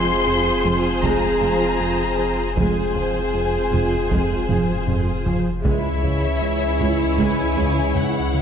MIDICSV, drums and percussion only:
0, 0, Header, 1, 2, 480
1, 0, Start_track
1, 0, Tempo, 769231
1, 1605, Time_signature, 4, 2, 24, 8
1, 5253, End_track
2, 0, Start_track
2, 0, Title_t, "Taiko and cinematic ensemble drums"
2, 645, Note_on_c, 9, 41, 69
2, 708, Note_off_c, 9, 41, 0
2, 1605, Note_on_c, 9, 41, 85
2, 1668, Note_off_c, 9, 41, 0
2, 1845, Note_on_c, 9, 43, 42
2, 1908, Note_off_c, 9, 43, 0
2, 2327, Note_on_c, 9, 43, 40
2, 2390, Note_off_c, 9, 43, 0
2, 2567, Note_on_c, 9, 41, 73
2, 2629, Note_off_c, 9, 41, 0
2, 2807, Note_on_c, 9, 45, 74
2, 2870, Note_off_c, 9, 45, 0
2, 3046, Note_on_c, 9, 45, 70
2, 3108, Note_off_c, 9, 45, 0
2, 3285, Note_on_c, 9, 43, 76
2, 3347, Note_off_c, 9, 43, 0
2, 3526, Note_on_c, 9, 41, 94
2, 3589, Note_off_c, 9, 41, 0
2, 3768, Note_on_c, 9, 43, 42
2, 3830, Note_off_c, 9, 43, 0
2, 4243, Note_on_c, 9, 43, 40
2, 4306, Note_off_c, 9, 43, 0
2, 4485, Note_on_c, 9, 41, 74
2, 4547, Note_off_c, 9, 41, 0
2, 4727, Note_on_c, 9, 43, 43
2, 4789, Note_off_c, 9, 43, 0
2, 4967, Note_on_c, 9, 43, 55
2, 5030, Note_off_c, 9, 43, 0
2, 5253, End_track
0, 0, End_of_file